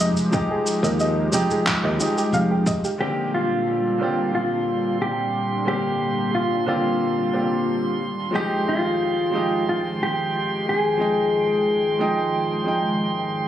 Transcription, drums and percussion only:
0.00 cabasa
0.17 cabasa
0.33 kick, cabasa
0.67 cabasa
0.84 cabasa
1.00 cabasa
1.33 cabasa
1.51 cabasa
1.66 kick, clap, cabasa
2.00 cabasa
2.18 cabasa
2.34 cabasa
2.66 kick, cabasa
2.85 cabasa

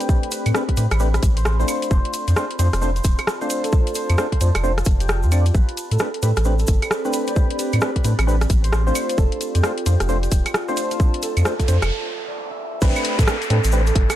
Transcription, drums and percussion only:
0.00 closed hi-hat, shaker
0.09 kick, shaker
0.23 closed hi-hat
0.31 open hi-hat, shaker
0.46 closed hi-hat, claves, shaker
0.55 cross-stick, shaker
0.69 kick, closed hi-hat
0.77 open hi-hat, shaker
0.91 cross-stick, closed hi-hat, claves, shaker
0.99 shaker
1.14 cross-stick, closed hi-hat, shaker
1.23 kick, open hi-hat, shaker
1.37 closed hi-hat, shaker
1.45 cross-stick, shaker
1.60 shaker
1.68 open hi-hat, claves, shaker
1.82 closed hi-hat, shaker
1.91 kick, shaker
2.05 closed hi-hat
2.13 open hi-hat, shaker
2.28 closed hi-hat, shaker
2.36 cross-stick, shaker
2.51 closed hi-hat
2.59 open hi-hat, shaker
2.73 cross-stick, closed hi-hat, shaker
2.82 shaker
2.96 closed hi-hat, shaker
3.04 kick, open hi-hat, shaker
3.18 cross-stick, closed hi-hat, claves, shaker
3.27 cross-stick, shaker
3.41 shaker
3.50 open hi-hat, shaker
3.64 closed hi-hat, shaker
3.72 kick, shaker
3.87 closed hi-hat, shaker
3.95 open hi-hat, shaker
4.10 closed hi-hat, claves, shaker
4.18 cross-stick, shaker
4.32 kick, closed hi-hat
4.41 open hi-hat, shaker
4.55 cross-stick, closed hi-hat, claves, shaker
4.64 shaker
4.78 cross-stick, closed hi-hat, shaker
4.85 kick, open hi-hat, shaker
5.00 closed hi-hat, shaker
5.09 cross-stick, shaker
5.23 shaker
5.32 open hi-hat, claves, shaker
5.46 closed hi-hat, shaker
5.54 kick, shaker
5.69 closed hi-hat
5.77 open hi-hat, shaker
5.91 closed hi-hat, shaker
5.99 cross-stick, shaker
6.14 closed hi-hat
6.22 open hi-hat, shaker
6.36 cross-stick, closed hi-hat, shaker
6.44 shaker
6.59 closed hi-hat, shaker
6.67 kick, open hi-hat, shaker
6.82 cross-stick, closed hi-hat, claves, shaker
6.91 cross-stick, shaker
7.05 shaker
7.13 open hi-hat, shaker
7.27 closed hi-hat, shaker
7.36 kick, shaker
7.50 closed hi-hat
7.59 open hi-hat, shaker
7.73 closed hi-hat, claves, shaker
7.81 cross-stick, shaker
7.96 kick, closed hi-hat
8.04 open hi-hat, shaker
8.19 cross-stick, closed hi-hat, claves, shaker
8.28 shaker
8.41 cross-stick, closed hi-hat, shaker
8.50 kick, open hi-hat, shaker
8.64 closed hi-hat, shaker
8.73 cross-stick, shaker
8.87 shaker
8.95 open hi-hat, claves, shaker
9.09 closed hi-hat, shaker
9.18 kick, shaker
9.32 closed hi-hat
9.41 open hi-hat, shaker
9.55 closed hi-hat, shaker
9.63 cross-stick, shaker
9.78 closed hi-hat
9.86 open hi-hat, shaker
10.00 cross-stick, closed hi-hat, shaker
10.09 shaker
10.23 closed hi-hat, shaker
10.32 kick, open hi-hat, shaker
10.46 cross-stick, closed hi-hat, claves, shaker
10.54 cross-stick, shaker
10.68 shaker
10.77 open hi-hat, shaker
10.91 closed hi-hat, shaker
11.00 kick, shaker
11.14 closed hi-hat
11.22 open hi-hat, shaker
11.37 closed hi-hat, claves, shaker
11.45 cross-stick, shaker
11.59 kick, closed hi-hat, shaker
11.68 open hi-hat, shaker
11.82 cross-stick, closed hi-hat, claves, shaker
12.81 kick, crash, shaker
12.96 closed hi-hat, claves, shaker
13.05 open hi-hat
13.19 kick, closed hi-hat, shaker
13.27 cross-stick, shaker
13.42 closed hi-hat, shaker
13.50 open hi-hat
13.64 closed hi-hat, shaker
13.72 shaker
13.87 closed hi-hat, shaker
13.95 kick, open hi-hat
14.10 cross-stick, closed hi-hat, claves, shaker

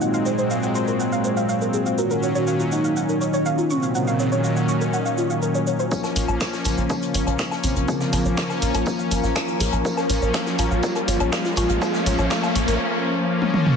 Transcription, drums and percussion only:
0.01 shaker
0.14 shaker
0.26 shaker
0.38 shaker
0.51 shaker
0.63 shaker
0.75 shaker
0.88 shaker
1.00 shaker
1.12 shaker
1.24 shaker
1.37 shaker
1.49 shaker
1.61 shaker
1.74 shaker
1.86 shaker
1.98 shaker
2.11 shaker
2.23 shaker
2.35 shaker
2.47 shaker
2.60 shaker
2.72 shaker
2.85 shaker
2.97 shaker
3.09 shaker
3.21 shaker
3.34 shaker
3.46 shaker
3.58 shaker
3.70 shaker
3.83 shaker
3.95 shaker
4.07 shaker
4.20 shaker
4.32 shaker
4.44 shaker
4.57 shaker
4.69 shaker
4.81 shaker
4.93 shaker
5.06 shaker
5.18 shaker
5.30 shaker
5.42 shaker
5.55 shaker
5.67 shaker
5.79 shaker
5.91 kick, tambourine, shaker
6.03 snare, low woodblock, shaker
6.16 open hi-hat, tambourine, shaker
6.28 low woodblock, shaker
6.41 finger snap, kick, snare, tambourine, shaker
6.53 snare, shaker
6.64 open hi-hat, tambourine, low woodblock, shaker
6.78 shaker
6.90 kick, tambourine, low woodblock, shaker
7.02 closed hi-hat, shaker
7.14 open hi-hat, tambourine, shaker
7.27 closed hi-hat, low woodblock, shaker
7.39 finger snap, kick, snare, tambourine, shaker
7.51 snare, low woodblock, shaker
7.64 open hi-hat, tambourine, shaker
7.76 closed hi-hat, shaker
7.88 kick, tambourine, low woodblock, shaker
8.01 snare, shaker
8.13 open hi-hat, tambourine, low woodblock, shaker
8.25 shaker
8.37 finger snap, kick, snare, tambourine, shaker
8.50 snare, low woodblock, shaker
8.62 open hi-hat, tambourine, shaker
8.74 closed hi-hat, open hi-hat, low woodblock, shaker
8.86 kick, tambourine, shaker
8.99 shaker
9.11 open hi-hat, tambourine, low woodblock, shaker
9.24 snare, shaker
9.36 finger snap, kick, snare, tambourine, low woodblock, shaker
9.48 shaker
9.60 open hi-hat, shaker
9.73 closed hi-hat, low woodblock, shaker
9.85 kick, tambourine, shaker
9.97 snare, low woodblock, shaker
10.10 open hi-hat, tambourine, shaker
10.22 shaker
10.34 finger snap, kick, snare, tambourine, low woodblock, shaker
10.46 snare, shaker
10.58 open hi-hat, tambourine, low woodblock, shaker
10.71 shaker
10.83 kick, tambourine, shaker
10.96 closed hi-hat, low woodblock, shaker
11.08 open hi-hat, tambourine, shaker
11.20 closed hi-hat, low woodblock, shaker
11.32 finger snap, kick, snare, tambourine, shaker
11.45 snare, shaker
11.56 open hi-hat, tambourine, low woodblock, shaker
11.69 closed hi-hat, shaker
11.82 kick, tambourine, low woodblock, shaker
11.94 snare, shaker
12.06 open hi-hat, tambourine, shaker
12.19 low woodblock, shaker
12.30 finger snap, kick, snare, tambourine, shaker
12.42 snare, low woodblock, shaker
12.55 open hi-hat, shaker
12.68 open hi-hat, shaker
13.42 high tom
13.54 mid tom
13.66 mid tom

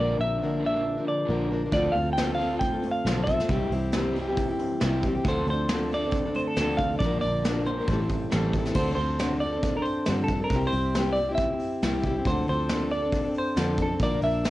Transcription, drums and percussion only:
1.72 kick, open hi-hat
1.94 open hi-hat
2.17 snare, open hi-hat
2.39 open hi-hat
2.61 kick, open hi-hat
2.83 open hi-hat
3.06 snare, open hi-hat
3.27 kick, open hi-hat
3.40 snare
3.48 kick, open hi-hat
3.71 open hi-hat
3.92 snare, open hi-hat
4.15 open hi-hat
4.36 kick, open hi-hat
4.59 open hi-hat
4.80 snare, open hi-hat
5.03 kick
5.24 kick, open hi-hat
5.47 open hi-hat
5.68 snare, open hi-hat
5.91 open hi-hat
6.11 kick, open hi-hat
6.34 open hi-hat
6.56 snare, open hi-hat
6.79 kick
7.00 kick, open hi-hat
7.22 open hi-hat
7.44 snare, open hi-hat
7.66 open hi-hat
7.87 kick, open hi-hat
8.10 kick, open hi-hat
8.31 snare, open hi-hat
8.53 kick, open hi-hat
8.65 snare
8.74 kick, crash
8.98 open hi-hat
9.19 snare, open hi-hat
9.40 open hi-hat
9.63 kick, open hi-hat
9.85 open hi-hat
10.05 snare, open hi-hat
10.28 kick, open hi-hat
10.50 kick, open hi-hat
10.72 open hi-hat
10.94 snare, open hi-hat
11.16 open hi-hat
11.37 kick, open hi-hat
11.60 open hi-hat
11.82 snare, open hi-hat
12.03 kick, open hi-hat
12.25 kick, open hi-hat
12.47 open hi-hat
12.68 snare, open hi-hat
12.91 open hi-hat
13.12 kick, open hi-hat
13.34 open hi-hat
13.56 snare, open hi-hat
13.78 kick, open hi-hat
13.99 kick, open hi-hat
14.21 open hi-hat
14.44 snare, open hi-hat

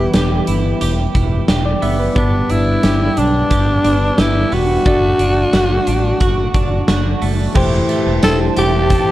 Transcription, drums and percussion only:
0.13 snare, closed hi-hat
0.47 closed hi-hat
0.81 closed hi-hat
1.15 kick, closed hi-hat
1.48 snare, closed hi-hat
1.82 open hi-hat
2.16 kick, closed hi-hat
2.50 closed hi-hat
2.83 snare, closed hi-hat
3.17 closed hi-hat
3.51 kick, closed hi-hat
3.85 closed hi-hat
4.18 snare, closed hi-hat
4.52 open hi-hat
4.86 kick, closed hi-hat
5.19 closed hi-hat
5.53 snare, closed hi-hat
5.87 closed hi-hat
6.20 kick, closed hi-hat
6.54 kick, closed hi-hat
6.88 snare, closed hi-hat
7.22 open hi-hat
7.55 kick, crash
7.89 closed hi-hat
8.23 snare, closed hi-hat, tambourine
8.56 closed hi-hat
8.90 kick, closed hi-hat

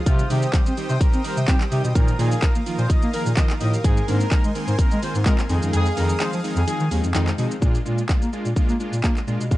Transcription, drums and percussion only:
0.06 kick, closed hi-hat, shaker
0.19 shaker
0.30 open hi-hat, shaker
0.42 shaker
0.53 kick, clap, closed hi-hat, shaker
0.66 shaker
0.77 open hi-hat, shaker
0.89 shaker
1.01 kick, closed hi-hat, shaker
1.13 shaker
1.24 open hi-hat, shaker
1.37 shaker
1.48 kick, clap, closed hi-hat, shaker
1.61 clap, shaker
1.72 open hi-hat, shaker
1.85 shaker
1.95 kick, closed hi-hat, shaker
2.08 shaker
2.19 open hi-hat, shaker
2.31 shaker
2.42 kick, clap, closed hi-hat, shaker
2.55 shaker
2.66 open hi-hat, shaker
2.78 shaker
2.90 kick, closed hi-hat, shaker
3.02 shaker
3.13 open hi-hat, shaker
3.26 shaker
3.37 kick, clap, closed hi-hat, shaker
3.50 clap, shaker
3.61 open hi-hat, shaker
3.74 shaker
3.84 kick, closed hi-hat, shaker
3.97 shaker
4.08 open hi-hat, shaker
4.21 shaker
4.31 kick, clap, closed hi-hat, shaker
4.44 shaker
4.55 open hi-hat, shaker
4.68 shaker
4.79 kick, closed hi-hat, shaker
4.91 shaker
5.03 open hi-hat, shaker
5.15 shaker
5.26 kick, clap, closed hi-hat, shaker
5.39 clap, shaker
5.49 open hi-hat, shaker
5.62 shaker
5.73 closed hi-hat, shaker
5.86 shaker
5.97 open hi-hat, shaker
6.09 shaker
6.20 clap, closed hi-hat, shaker
6.33 shaker
6.44 open hi-hat, shaker
6.56 shaker
6.68 closed hi-hat, shaker
6.80 shaker
6.91 open hi-hat, shaker
7.04 shaker
7.15 clap, closed hi-hat, shaker
7.27 clap, shaker
7.38 open hi-hat, shaker
7.51 shaker
7.62 kick, shaker
7.75 shaker
7.86 shaker
7.98 shaker
8.09 kick, clap, shaker
8.22 shaker
8.33 shaker
8.45 shaker
8.56 kick, shaker
8.69 shaker
8.80 shaker
8.93 shaker
9.04 kick, clap, shaker
9.17 clap, shaker
9.28 shaker
9.41 shaker
9.51 kick, shaker

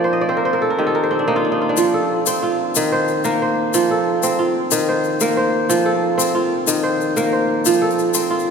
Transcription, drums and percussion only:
1.77 shaker
2.26 shaker
2.75 shaker
3.08 shaker
3.24 shaker
3.74 shaker
4.23 shaker
4.71 shaker
5.04 shaker
5.20 shaker
5.70 shaker
6.20 shaker
6.67 shaker
7.01 shaker
7.17 shaker
7.65 shaker
7.73 shaker
7.91 shaker
7.99 shaker
8.14 shaker
8.39 shaker

